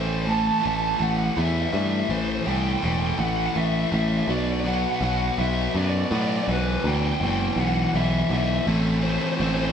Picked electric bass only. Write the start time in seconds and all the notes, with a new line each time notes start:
Already playing: A1
0.66 A1
1.00 A1
1.37 E2
1.73 G2
2.09 A1
2.47 C2
2.83 E1
3.19 A1
3.56 A1
3.92 A1
4.28 B1
5.01 B1
5.38 B1
5.75 F#2
6.11 A2
6.48 B1
6.84 D2
7.21 F#1
7.56 B1
7.94 B1
8.30 B1
8.67 A1
9.40 A1